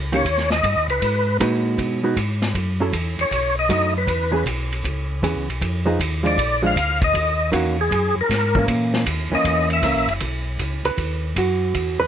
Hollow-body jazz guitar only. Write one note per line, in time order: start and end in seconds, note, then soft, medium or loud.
0.12 0.24 D#3 medium
0.12 0.24 A#3 medium
0.12 0.25 C#4 medium
0.12 0.25 G4 medium
1.40 1.99 G#3 medium
1.40 1.99 D#4 medium
1.40 1.99 F#4 medium
1.40 1.99 B4 medium
2.03 2.15 G#3 medium
2.03 2.15 D#4 medium
2.03 2.15 F#4 medium
2.03 2.16 B4 medium
2.80 2.92 F#3 medium
2.80 2.92 C#4 medium
2.80 2.93 E4 medium
2.80 2.93 A4 medium
3.69 3.93 F#3 medium
3.69 3.93 A3 medium
3.69 3.93 D#4 medium
4.32 4.44 E3 medium
4.32 4.44 B3 medium
4.32 4.45 C#4 medium
4.32 4.45 G#4 medium
5.23 5.46 E3 medium
5.23 5.46 B3 medium
5.23 5.46 C#4 medium
5.23 5.46 G#4 medium
5.86 5.98 F3 medium
5.86 5.98 B3 medium
5.86 5.98 D#4 medium
5.86 5.98 G#4 medium
6.23 6.36 F3 medium
6.23 6.36 G#3 medium
6.23 6.36 D4 medium
6.62 6.75 F3 medium
6.62 6.75 G#3 medium
6.62 6.75 D4 medium
7.52 7.75 D#3 medium
7.52 7.76 A#3 medium
7.52 7.76 C#4 medium
7.52 7.76 F#4 medium
8.56 9.04 E3 medium
8.56 9.05 A#3 medium
8.56 9.05 C#4 medium
9.32 9.80 E3 medium
9.32 9.81 A#3 medium
9.32 9.81 C#4 medium
9.83 10.06 E3 medium
9.83 10.07 A#3 medium
9.83 10.07 C#4 medium
10.85 11.33 B4 medium
11.38 11.97 F#4 soft
12.00 12.07 B4 loud